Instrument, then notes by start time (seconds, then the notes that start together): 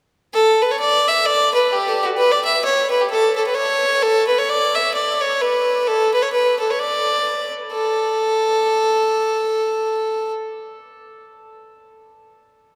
fiddle
0.34 A4
0.62 B4
0.71 C#5
0.80 D5
1.08 E5
1.26 D5
1.54 B4
1.72 G4
1.88 G4 A4
2.03 F#4 G4
2.17 B4
2.32 D5
2.45 E5
2.65 C#5
2.90 B4
3.01 G4
3.10 A4
3.36 A4
3.47 B4
3.54 C#5
4.02 A4
4.27 B4
4.38 C#5
4.49 D5
4.75 E5
4.94 D5
5.21 C#5
5.41 B4
5.87 A4
6.14 B4
6.22 C#5
6.33 B4
6.59 A4
6.70 C#5
6.79 D5
7.72 A4